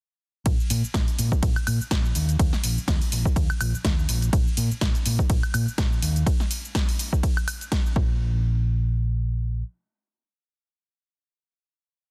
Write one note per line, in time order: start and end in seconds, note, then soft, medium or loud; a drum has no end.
0.46 0.57 A#1 loud
0.46 kick loud
0.46 closed hi-hat medium
0.46 ride medium
0.46 cabasa soft
0.60 cabasa soft
0.70 0.81 A#2 medium
0.70 open hi-hat loud
0.70 cabasa medium
0.84 muted fingered electric bass stroke soft
0.84 cabasa soft
0.94 1.05 A#1 medium
0.94 kick loud
0.94 snare loud
0.94 closed hi-hat medium
0.94 ride medium
0.94 cabasa soft
1.08 closed hi-hat medium
1.08 cabasa soft
1.19 1.30 A#2 medium
1.19 open hi-hat loud
1.19 cabasa medium
1.32 kick medium
1.32 cabasa soft
1.43 1.54 A#1 medium
1.43 kick loud
1.43 closed hi-hat medium
1.43 ride medium
1.43 cabasa soft
1.56 closed hi-hat soft
1.56 cabasa soft
1.56 high woodblock medium
1.67 1.78 A#2 medium
1.67 open hi-hat loud
1.67 cabasa medium
1.67 high woodblock medium
1.81 muted fingered electric bass stroke soft
1.81 cabasa soft
1.91 2.11 A#1 medium
1.91 kick loud
1.91 snare loud
1.91 closed hi-hat medium
1.91 ride medium
1.91 cabasa soft
2.05 cabasa soft
2.15 2.35 D#2 medium
2.15 open hi-hat loud
2.15 cabasa medium
2.29 closed hi-hat medium
2.29 cabasa soft
2.39 kick loud
2.39 closed hi-hat medium
2.39 ride medium
2.39 cabasa soft
2.53 snare soft
2.53 cabasa soft
2.64 2.75 A#1 medium
2.64 open hi-hat loud
2.64 cabasa medium
2.78 muted fingered electric bass stroke soft
2.78 cabasa soft
2.88 2.99 D#2 medium
2.88 kick loud
2.88 snare loud
2.88 closed hi-hat medium
2.88 ride medium
2.88 cabasa soft
3.02 open hi-hat medium
3.02 cabasa soft
3.12 3.23 A#1 medium
3.12 open hi-hat loud
3.12 cabasa medium
3.25 kick medium
3.25 cabasa soft
3.36 3.47 D#2 loud
3.36 kick loud
3.36 closed hi-hat medium
3.36 ride medium
3.36 cabasa soft
3.50 muted fingered electric bass stroke soft
3.50 closed hi-hat soft
3.50 cabasa soft
3.50 high woodblock medium
3.61 3.72 A#1 medium
3.61 open hi-hat loud
3.61 cabasa medium
3.61 high woodblock medium
3.74 muted fingered electric bass stroke soft
3.74 cabasa soft
3.85 4.05 D#2 medium
3.85 kick loud
3.85 snare loud
3.85 closed hi-hat medium
3.85 ride medium
3.85 cabasa soft
3.99 cabasa soft
4.09 4.29 A#1 medium
4.09 open hi-hat loud
4.09 cabasa medium
4.22 closed hi-hat medium
4.22 cabasa soft
4.33 4.44 A#1 loud
4.33 kick loud
4.33 closed hi-hat medium
4.33 ride medium
4.33 cabasa soft
4.47 cabasa soft
4.57 4.68 A#2 medium
4.57 open hi-hat loud
4.57 cabasa medium
4.71 muted fingered electric bass stroke soft
4.71 cabasa soft
4.81 4.92 A#1 medium
4.81 kick loud
4.81 snare loud
4.81 closed hi-hat medium
4.81 ride medium
4.81 cabasa soft
4.95 closed hi-hat medium
4.95 cabasa soft
5.06 5.17 A#2 medium
5.06 open hi-hat loud
5.06 cabasa medium
5.19 kick medium
5.19 cabasa soft
5.30 5.41 A#1 medium
5.30 kick loud
5.30 closed hi-hat medium
5.30 ride medium
5.30 cabasa soft
5.43 closed hi-hat soft
5.43 cabasa soft
5.43 high woodblock medium
5.54 5.65 A#2 loud
5.54 open hi-hat loud
5.54 cabasa medium
5.54 high woodblock medium
5.68 muted fingered electric bass stroke soft
5.68 cabasa soft
5.78 5.98 A#1 medium
5.78 kick loud
5.78 snare loud
5.78 closed hi-hat medium
5.78 ride medium
5.78 cabasa soft
5.92 cabasa soft
6.02 6.22 D#2 medium
6.02 open hi-hat loud
6.02 cabasa medium
6.16 closed hi-hat medium
6.16 cabasa soft
6.27 kick loud
6.27 closed hi-hat medium
6.27 ride medium
6.27 cabasa soft
6.40 snare soft
6.40 cabasa soft
6.51 open hi-hat loud
6.51 cabasa medium
6.65 cabasa soft
6.75 kick loud
6.75 snare loud
6.75 closed hi-hat medium
6.75 ride medium
6.75 cabasa soft
6.89 open hi-hat medium
6.89 cabasa soft
6.99 open hi-hat loud
6.99 cabasa medium
7.13 kick medium
7.13 cabasa soft
7.23 kick loud
7.23 closed hi-hat medium
7.23 ride medium
7.23 cabasa soft
7.37 closed hi-hat soft
7.37 cabasa soft
7.37 high woodblock medium
7.48 open hi-hat loud
7.48 cabasa medium
7.48 high woodblock medium
7.61 closed hi-hat soft
7.61 cabasa soft
7.72 kick loud
7.72 snare loud
7.72 closed hi-hat medium
7.72 ride medium
7.72 cabasa soft
7.86 cabasa soft
7.96 9.61 A#1 loud
7.96 kick loud